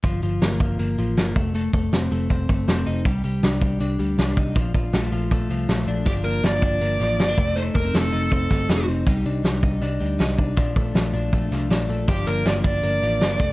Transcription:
<<
  \new Staff \with { instrumentName = "Lead electric guitar" } { \time 4/4 \key g \minor \tempo 4 = 159 r1 | r1 | r1 | r1 |
g'8 bes'8 d''8 d''2~ d''8 | c''8 bes'8 a'4 a'4. r8 | r1 | r1 |
g'8 bes'8 d''8 d''2~ d''8 | }
  \new Staff \with { instrumentName = "Clean electric guitar" } { \time 4/4 \key g \minor f8 f8 bes8 f8 bes8 f8 bes8 a8 | a8 a8 c'8 a8 c'8 a8 c'8 ees'8 | g8 g8 d'8 g8 d'8 g8 d'8 ees'8 | f8 f8 a8 f8 a8 f8 a8 d'8 |
<f d'>8 bes8 f8 d'8 bes8 f8 c'16 d'16 a8 | <a ees'>8 bes16 c'16 a8 ees'8 c'8 a8 ees'8 c'8 | <g ees'>8 d'8 g8 ees'8 d'8 g8 ees'8 d'8 | <f d'>8 a8 f8 d'8 a8 f8 d'8 a8 |
<f d'>8 bes8 f8 d'8 bes8 f8 c'16 d'16 a8 | }
  \new Staff \with { instrumentName = "Picked electric bass" } { \clef bass \time 4/4 \key g \minor g,,8 g,,8 g,,8 g,,8 g,,8 a,,8 g,,8 f,,8~ | f,,8 f,,8 f,,8 f,,8 f,,8 g,,8 f,,8 f,,8 | c,8 c,8 c,8 c,8 c,8 d,8 c,8 c,8 | bes,,8 bes,,8 bes,,8 bes,,8 bes,,8 c,8 bes,,8 bes,,8 |
g,,8 g,,8 g,,8 g,,8 g,,8 a,,8 g,,8 f,,8~ | f,,8 f,,8 f,,8 f,,8 f,,8 g,,8 f,,8 f,,8 | c,8 c,8 c,8 c,8 c,8 d,8 c,8 c,8 | bes,,8 bes,,8 bes,,8 bes,,8 bes,,8 c,8 bes,,8 bes,,8 |
g,,8 g,,8 g,,8 g,,8 g,,8 a,,8 g,,8 f,,8 | }
  \new DrumStaff \with { instrumentName = "Drums" } \drummode { \time 4/4 <hh bd>8 hh8 <hh sn>8 <hh bd>8 hh8 hh8 <hh sn>8 <hh bd>8 | hh8 <hh bd>8 <hh sn>8 hh8 <hh bd>8 <hh bd>8 <hh sn>8 hh8 | <hh bd>8 hh8 <hh sn>8 <hh bd>8 hh8 hh8 <hh sn>8 <hh bd>8 | <hh bd>8 <hh bd>8 <hh sn>8 hh8 <hh bd>8 hh8 <hh sn>8 hh8 |
<hh bd>8 hh8 <hh sn>8 <hh bd>8 hh8 <hh sn>8 <hh sn>8 <hh bd>8 | hh8 <hh bd>8 <hh sn>8 hh8 <hh bd>8 <hh bd sn>8 <hh sn>8 hh8 | <hh bd>8 hh8 <hh sn>8 <hh bd>8 hh8 hh8 <hh sn>8 <hh bd>8 | <hh bd>8 <hh bd>8 <hh sn>8 hh8 <hh bd>8 <hh sn>8 <hh sn>8 hh8 |
<hh bd>8 hh8 <hh sn>8 <hh bd>8 hh8 hh8 <hh sn>8 <hh bd>8 | }
>>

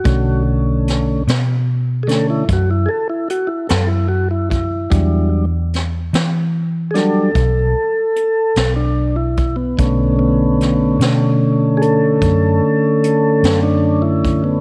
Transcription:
<<
  \new Staff \with { instrumentName = "Tonewheel organ" } { \time 12/8 \key b \minor \tempo 4. = 49 fis'8 r2 <gis' a'>16 e'16 fis'16 e'16 <gis' a'>16 e'16 fis'16 e'16 a'16 e'16 fis'16 e'16 e'8~ | e'8 r2 <gis' a'>2~ <gis' a'>16 d'8 e'8 b16~ | b8 b4 r4 <gis' a'>2~ <gis' a'>16 d'8 e'8 b16 | }
  \new Staff \with { instrumentName = "Tonewheel organ" } { \time 12/8 \key b \minor <d a cis'>4. r4 <d a cis'>8 r2. | <fis g d'>8 r2 <fis g d'>8 r2. | <d a cis'>1. | }
  \new Staff \with { instrumentName = "Fingered electric bass" } { \clef bass \time 12/8 \key b \minor b,,4. b,4. fis,8 r4 fis,4. | e,4. e4. b,,8 r4 b,,4. | b,,4. b,4. fis,8 r4 fis,4. | }
  \new DrumStaff \with { instrumentName = "Drums" } \drummode { \time 12/8 <hh bd>4 <hh sn>8 <hh sn>4 <hh sn>8 <hh bd>4 hh8 <hh sn>4 <hh bd>8 | <hh bd>4 <hh sn>8 <hh sn>4 <hh sn>8 <hh bd>4 hh8 <hh sn>4 <hh bd>8 | <hh bd>4 <hh sn>8 <hh sn>4 hh8 <hh bd>4 hh8 <hh sn>4 <hh bd>8 | }
>>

